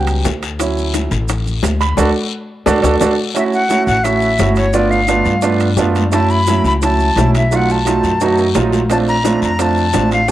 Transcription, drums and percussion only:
0.07 high conga soft
0.07 high timbale medium
0.07 maracas soft
0.25 high bongo medium
0.25 low bongo medium
0.25 high conga soft
0.25 low timbale medium
0.25 short guiro medium
0.25 maracas medium
0.43 high bongo soft
0.43 high timbale medium
0.43 short guiro medium
0.43 maracas soft
0.59 high bongo medium
0.59 high conga soft
0.59 high timbale medium
0.59 long guiro medium
0.59 maracas medium
0.77 high bongo soft
0.77 high conga soft
0.77 maracas soft
0.94 high bongo medium
0.94 high conga medium
0.94 high timbale medium
0.94 low timbale medium
0.94 short guiro medium
0.94 maracas medium
1.11 high conga soft
1.11 short guiro medium
1.11 maracas soft
1.29 high bongo medium
1.29 high conga soft
1.29 low conga medium
1.29 high timbale medium
1.29 long guiro medium
1.29 maracas medium
1.46 high bongo soft
1.46 high conga soft
1.46 low conga medium
1.46 maracas soft
1.63 high bongo medium
1.63 low bongo medium
1.63 high conga medium
1.63 high timbale medium
1.63 low timbale medium
1.63 short guiro medium
1.63 maracas medium
1.80 high bongo soft
1.80 high conga soft
1.80 high timbale medium
1.80 short guiro medium
1.80 maracas soft
1.97 low bongo medium
1.97 high conga loud
1.97 high timbale medium
1.97 long guiro medium
1.97 maracas loud
2.66 low bongo loud
2.66 high conga medium
2.66 high timbale loud
2.66 long guiro medium
2.66 maracas loud
2.83 low bongo medium
2.83 high conga medium
2.83 high timbale medium
2.83 long guiro medium
2.83 maracas medium
3.01 low bongo medium
3.01 high conga loud
3.01 high timbale medium
3.01 long guiro medium
3.01 maracas loud
3.36 high bongo medium
3.36 high conga soft
3.36 high timbale medium
3.36 maracas medium
3.53 high bongo soft
3.53 high conga soft
3.53 maracas soft
3.70 high bongo medium
3.70 high conga medium
3.70 high timbale medium
3.70 low timbale soft
3.70 short guiro medium
3.70 maracas medium
3.87 high conga soft
3.87 short guiro medium
3.87 maracas soft
4.04 high bongo medium
4.04 high conga soft
4.04 high timbale medium
4.04 long guiro medium
4.04 maracas medium
4.22 high bongo soft
4.22 high conga soft
4.22 maracas soft
4.38 high bongo medium
4.38 low bongo medium
4.38 high conga medium
4.38 high timbale medium
4.38 low timbale medium
4.38 short guiro medium
4.38 maracas medium
4.56 high conga soft
4.56 high timbale medium
4.56 short guiro medium
4.56 maracas soft
4.73 high bongo medium
4.73 high conga soft
4.73 long guiro medium
4.73 maracas medium
4.92 high bongo soft
4.92 high conga soft
4.92 maracas soft
5.08 high bongo medium
5.08 high conga medium
5.08 high timbale medium
5.08 low timbale soft
5.08 short guiro medium
5.08 maracas medium
5.25 high bongo soft
5.25 short guiro medium
5.25 maracas soft
5.42 high bongo medium
5.42 high conga soft
5.42 high timbale medium
5.42 long guiro medium
5.42 maracas medium
5.60 high conga soft
5.60 high timbale medium
5.60 maracas soft
5.77 high bongo medium
5.77 low bongo medium
5.77 low timbale medium
5.77 short guiro medium
5.77 maracas medium
5.95 high bongo soft
5.95 high conga medium
5.95 high timbale medium
5.95 short guiro medium
5.95 maracas soft
6.12 high bongo medium
6.12 high timbale medium
6.12 long guiro medium
6.12 maracas medium
6.30 high bongo soft
6.30 high conga soft
6.30 maracas soft
6.47 high bongo medium
6.47 high conga medium
6.47 high timbale medium
6.47 low timbale medium
6.47 short guiro medium
6.47 maracas medium
6.65 high conga soft
6.65 short guiro medium
6.65 maracas soft
6.82 high bongo medium
6.82 high conga soft
6.82 high timbale medium
6.82 long guiro medium
6.82 maracas medium
6.99 high bongo soft
6.99 high conga soft
6.99 maracas soft
7.17 high bongo medium
7.17 low bongo medium
7.17 high conga medium
7.17 high timbale medium
7.17 low timbale medium
7.17 short guiro medium
7.17 maracas medium
7.35 high bongo soft
7.35 high timbale medium
7.35 short guiro medium
7.35 maracas soft
7.52 high bongo medium
7.52 high conga soft
7.52 long guiro medium
7.52 maracas medium
7.69 high bongo soft
7.69 high conga soft
7.69 maracas soft
7.86 high bongo medium
7.86 high conga soft
7.86 high timbale medium
7.86 low timbale soft
7.86 short guiro medium
7.86 maracas medium
8.04 high bongo soft
8.04 short guiro medium
8.04 maracas soft
8.21 high bongo medium
8.21 high conga soft
8.21 high timbale medium
8.21 long guiro medium
8.21 maracas medium
8.38 high conga soft
8.38 high timbale medium
8.38 maracas soft
8.55 high bongo medium
8.55 low bongo medium
8.55 high conga soft
8.55 low timbale loud
8.55 short guiro medium
8.55 maracas medium
8.73 high conga medium
8.73 low timbale medium
8.73 short guiro medium
8.73 maracas soft
8.90 high bongo medium
8.90 high conga soft
8.90 high timbale medium
8.90 long guiro medium
8.90 maracas medium
9.08 high bongo soft
9.08 high conga soft
9.08 maracas soft
9.25 high bongo medium
9.25 high conga medium
9.25 high timbale medium
9.25 low timbale medium
9.25 short guiro medium
9.25 maracas medium
9.42 high conga soft
9.42 short guiro medium
9.42 maracas soft
9.59 high bongo medium
9.59 high conga soft
9.59 high timbale medium
9.59 long guiro medium
9.59 maracas medium
9.77 high bongo soft
9.77 high conga soft
9.77 maracas soft
9.93 high bongo medium
9.93 low bongo medium
9.93 high conga medium
9.93 high timbale medium
9.93 low timbale medium
9.93 short guiro medium
9.93 maracas medium
10.11 high bongo soft
10.11 high timbale medium
10.11 short guiro medium
10.11 maracas soft
10.28 long guiro medium

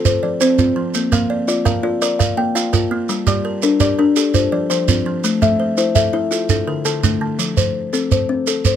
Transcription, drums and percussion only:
0.05 shekere medium
0.41 shekere medium
0.58 shekere medium
0.94 shekere medium
1.12 shekere medium
1.48 shekere medium
1.66 shekere medium
2.02 shekere medium
2.20 shekere medium
2.56 shekere medium
2.73 shekere medium
3.09 shekere soft
3.27 shekere medium
3.62 shekere medium
3.80 shekere medium
4.16 shekere medium
4.34 shekere medium
4.70 shekere medium
4.88 shekere medium
5.24 shekere medium
5.42 shekere medium
5.77 shekere medium
5.95 shekere medium
6.32 shekere medium
6.49 shekere medium
6.85 shekere medium
7.03 shekere medium
7.39 shekere medium
7.57 shekere medium
7.93 shekere medium
8.11 shekere medium
8.47 shekere medium
8.65 shekere medium

